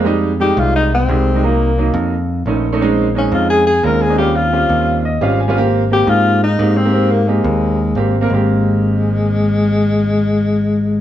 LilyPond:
<<
  \new Staff \with { instrumentName = "Tenor saxophone" } { \time 4/4 \key aes \major \tempo 4 = 174 r4 g'8 f'8 ees'8 c'4. | bes4. r2 r8 | r4 des'8 f'8 aes'8 aes'8 bes'8 aes'8 | g'8 f'2 r4. |
r4 g'8 f'4 ees'4 c'8~ | c'8 bes8 aes2~ aes8 r8 | aes1~ | aes1 | }
  \new Staff \with { instrumentName = "Grand piano" } { \time 4/4 \key aes \major << { r1 | r1 | r1 | r2 r8 ees''8 f''8 aes''8 |
r1 | r1 | r1 | r1 | } \\ { <g aes ees'>8. r16 <g aes ees'>4. r8 <g aes ees'>8 r16 <g aes ees'>16 | <ges bes ees'>8. r16 <ges bes ees'>4 r4 <a cis' ees'>8 r16 <a cis' ees'>16 | <aes c' des' ees'>8. r16 <aes c' des' ees'>4. r8 <aes c' des' f'>8 r16 <aes c' des' ees'>16 | <g c' des' f'>8. r16 <g c' des' f'>4. r8 <g c' des' f'>8 r16 <g c' des' f'>16 |
<bes c' g'>8. r16 <bes c' g'>4. r8 <bes c' g'>8 r16 <bes c' g'>16 | <bes c' g'>8. r16 <bes c' g'>4. r8 <bes c' g'>8 r16 <bes c' bes'>16 | <bes c' g'>1~ | <bes c' g'>1 | } >> }
  \new Staff \with { instrumentName = "Picked electric bass" } { \clef bass \time 4/4 \key aes \major f,4. c,4. c,4~ | c,4. f,4. bes,,4~ | bes,,4. f,4. ees,4~ | ees,4. ees,4. aes,,4~ |
aes,,4. aes,4. aes,4~ | aes,4. ees,4. aes,,4 | aes,,1~ | aes,,1 | }
>>